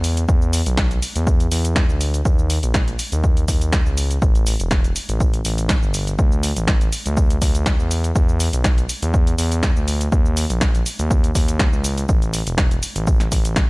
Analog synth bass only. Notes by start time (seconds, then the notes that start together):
Already playing: E2
0.29 E2
0.66 B1
1.16 E2
1.52 E2
1.89 D2
2.25 D#2
2.63 A#1
3.12 D#2
3.48 D#2
3.86 C#2
4.22 A1
4.60 E1
5.09 A1
5.45 A1
5.83 G1
6.19 D2
6.57 A1
7.06 D2
7.42 D2
7.80 E2
8.16 E2
8.53 B1
9.02 E2
9.39 E2
9.76 D2
10.12 D#2
10.50 A#1
10.99 D#2
11.35 D#2
11.73 C#2
12.09 A1
12.47 E1
12.96 A1
13.32 A1